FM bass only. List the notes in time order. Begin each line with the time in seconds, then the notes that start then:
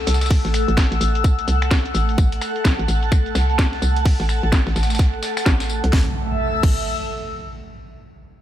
0.07 C2
0.45 A1
0.68 A1
0.92 A1
1.01 A1
1.48 C2
1.95 A1
2.18 A1
2.65 B1
2.79 A1
2.88 A1
3.35 C2
3.82 C2
4.20 A1
4.43 A1
4.67 A1
4.76 A1
5.46 A1
5.84 C2
6.63 A1